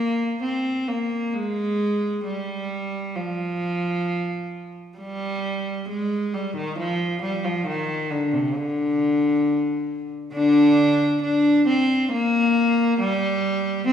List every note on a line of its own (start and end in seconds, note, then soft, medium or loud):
0.00 0.38 A#3 medium
0.43 0.88 C4 medium
0.88 1.34 A#3 medium
1.34 2.25 G#3 medium
2.25 3.14 G3 medium
3.16 4.75 F3 medium
4.98 5.85 G3 medium
5.89 6.33 G#3 medium
6.34 6.56 G3 medium
6.56 6.78 D#3 medium
6.79 7.22 F3 medium
7.22 7.45 G3 medium
7.45 7.68 F3 medium
7.67 8.11 D#3 medium
8.11 8.34 D3 medium
8.33 8.57 C3 medium
8.55 10.12 D3 medium
10.34 11.19 D3 medium
10.34 11.19 D4 medium
11.22 11.66 D4 medium
11.67 12.10 C4 medium
12.12 12.98 A#3 medium
12.99 13.86 G3 medium
13.87 13.93 C4 medium